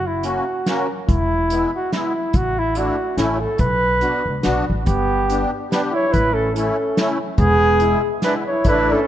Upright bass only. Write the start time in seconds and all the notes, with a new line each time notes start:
Already playing: F#1
1.09 E1
2.34 A1
3.17 A1
3.60 B1
4.26 C#2
4.46 B1
4.70 A1
4.88 G1
6.15 A1
7.38 E1
8.65 A1